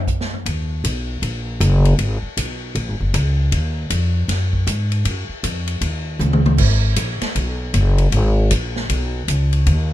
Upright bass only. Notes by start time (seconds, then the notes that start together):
0.46 D#2
0.84 B1
1.22 A#1
1.60 F#1
1.99 G#1
2.23 muted upright bass stroke
2.37 B1
2.75 A#1
2.88 G#1
3.00 F#1
3.14 C#2
3.52 D#2
3.90 F2
4.28 F#2
4.67 G#2
5.05 F#2
5.29 muted upright bass stroke
5.43 F2
5.81 D#2
6.19 C#2
6.58 G#1
6.97 A#1
7.21 muted upright bass stroke
7.35 B1
7.74 F#1
8.12 G#1
8.51 A#1
8.89 B1
9.28 C#2
9.67 D#2